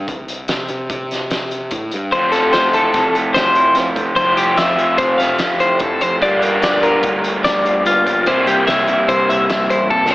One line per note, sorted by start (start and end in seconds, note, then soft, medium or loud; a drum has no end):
0.08 0.46 C2 medium
0.08 kick medium
0.08 closed hi-hat medium
0.28 closed hi-hat medium
0.48 0.69 C3 medium
0.48 snare loud
0.48 closed hi-hat medium
0.68 0.89 C3 medium
0.68 closed hi-hat medium
0.90 1.68 C3 medium
0.90 kick loud
0.90 closed hi-hat medium
1.11 snare soft
1.11 closed hi-hat medium
1.30 snare loud
1.30 closed hi-hat medium
1.51 closed hi-hat medium
1.71 1.90 A2 medium
1.71 kick medium
1.71 closed hi-hat medium
1.91 2.11 G2 medium
1.91 closed hi-hat medium
2.12 4.15 F2 medium
2.12 3.74 F2 medium
2.12 4.16 C3 medium
2.12 4.17 F3 medium
2.12 4.19 A3 medium
2.12 4.17 C4 medium
2.12 2.33 C5 medium
2.12 kick medium
2.12 closed hi-hat medium
2.32 3.36 F3 medium
2.32 2.53 A4 medium
2.32 snare soft
2.32 closed hi-hat medium
2.53 3.16 A3 medium
2.53 2.74 C5 medium
2.53 snare loud
2.53 closed hi-hat medium
2.73 3.56 E4 medium
2.73 3.15 A4 medium
2.73 closed hi-hat medium
2.94 3.72 C2 medium
2.94 3.35 C3 medium
2.94 kick loud
2.94 snare soft
2.94 closed hi-hat medium
3.15 4.57 A3 medium
3.15 closed hi-hat soft
3.34 3.95 F3 medium
3.34 3.76 C5 medium
3.34 snare loud
3.34 closed hi-hat medium
3.55 4.15 E4 medium
3.55 closed hi-hat medium
3.75 4.15 F2 medium
3.75 snare soft
3.75 closed hi-hat medium
3.96 4.16 F2 medium
3.96 4.36 F3 medium
3.96 kick medium
3.96 closed hi-hat medium
4.16 4.55 C2 medium
4.16 6.00 F2 medium
4.16 6.20 F2 medium
4.16 6.21 C3 medium
4.16 6.21 F3 medium
4.16 6.23 A3 medium
4.16 6.22 C4 medium
4.16 4.37 C5 medium
4.16 kick medium
4.16 closed hi-hat medium
4.36 5.38 F3 medium
4.36 4.58 G4 medium
4.36 closed hi-hat medium
4.57 4.77 F3 medium
4.57 5.19 A3 medium
4.57 4.99 E5 medium
4.57 snare loud
4.57 closed hi-hat medium
4.78 4.98 F3 medium
4.78 closed hi-hat medium
4.98 5.39 C3 medium
4.98 5.77 F3 medium
4.98 5.19 C5 medium
4.98 kick loud
4.98 closed hi-hat medium
5.18 6.25 A3 medium
5.18 5.60 F5 medium
5.18 snare soft
5.18 closed hi-hat medium
5.39 6.22 F3 medium
5.39 snare loud
5.39 closed hi-hat medium
5.60 6.19 E4 medium
5.60 5.81 C5 medium
5.60 closed hi-hat medium
5.79 6.00 F2 medium
5.79 6.01 A4 medium
5.79 kick loud
5.79 closed hi-hat medium
6.01 6.22 F2 medium
6.01 6.21 F2 medium
6.01 6.22 C5 medium
6.01 closed hi-hat medium
6.21 8.25 G2 medium
6.21 7.00 G2 loud
6.21 7.84 G2 medium
6.21 8.26 D3 medium
6.21 8.27 G3 medium
6.21 6.42 G3 medium
6.21 8.28 A#3 medium
6.21 8.29 D4 loud
6.21 6.83 F4 medium
6.21 6.43 D5 medium
6.21 kick medium
6.21 closed hi-hat medium
6.42 7.46 G3 medium
6.42 6.63 A#4 medium
6.42 closed hi-hat medium
6.62 6.84 D5 medium
6.62 snare loud
6.62 closed hi-hat medium
6.83 7.65 F4 medium
6.83 7.24 A#4 medium
6.83 closed hi-hat medium
7.03 7.82 D2 medium
7.03 8.25 D3 medium
7.03 kick loud
7.03 closed hi-hat medium
7.24 closed hi-hat medium
7.44 8.06 G3 medium
7.44 7.86 D5 medium
7.44 snare loud
7.44 closed hi-hat medium
7.66 8.25 F4 medium
7.66 closed hi-hat medium
7.85 8.24 G2 medium
7.85 8.27 F4 medium
7.85 closed hi-hat medium
8.06 8.26 G2 medium
8.06 8.46 G3 medium
8.06 kick medium
8.06 closed hi-hat medium
8.26 8.66 C2 medium
8.26 10.15 C3 medium
8.26 9.09 C3 medium
8.26 10.15 G3 medium
8.26 10.15 A#3 medium
8.26 10.15 E4 medium
8.26 8.48 C5 medium
8.26 kick medium
8.26 closed hi-hat medium
8.47 9.49 G3 medium
8.47 8.68 G4 medium
8.47 closed hi-hat medium
8.67 8.88 C3 medium
8.67 9.09 E5 medium
8.67 snare medium
8.67 closed hi-hat medium
8.88 9.08 C3 medium
8.88 9.71 E4 medium
8.88 closed hi-hat medium
9.09 9.91 G2 medium
9.09 9.67 C3 medium
9.09 9.29 C5 medium
9.09 kick loud
9.09 closed hi-hat medium
9.29 9.70 E5 medium
9.29 closed hi-hat medium
9.49 10.10 G3 medium
9.49 snare medium
9.49 closed hi-hat medium
9.70 9.90 A1 medium
9.70 10.15 E4 medium
9.70 9.90 C5 medium
9.70 closed hi-hat medium
9.90 10.09 A#1 medium
9.90 10.15 C3 medium
9.90 10.11 A4 medium
9.90 kick loud
10.06 snare medium
10.11 10.15 G3 medium
10.11 10.15 C5 medium